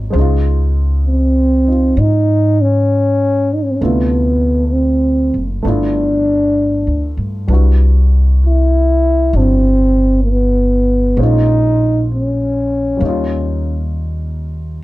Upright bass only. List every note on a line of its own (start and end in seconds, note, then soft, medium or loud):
0.13 1.93 C#2 medium
1.97 3.76 G#2 medium
3.82 5.29 D2 medium
5.34 5.62 F#1 medium
5.65 6.84 G1 medium
6.87 7.16 D2 soft
7.17 7.47 G2 medium
7.48 9.30 C2 medium
9.33 11.14 G1 medium
11.17 12.96 A#1 medium
13.01 14.79 D#2 medium